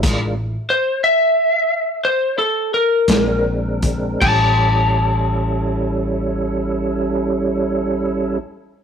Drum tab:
CC |x-----------|x-----------|
HH |x--------x-x|------------|
SD |---------o--|------------|
BD |o--------o-o|o-----------|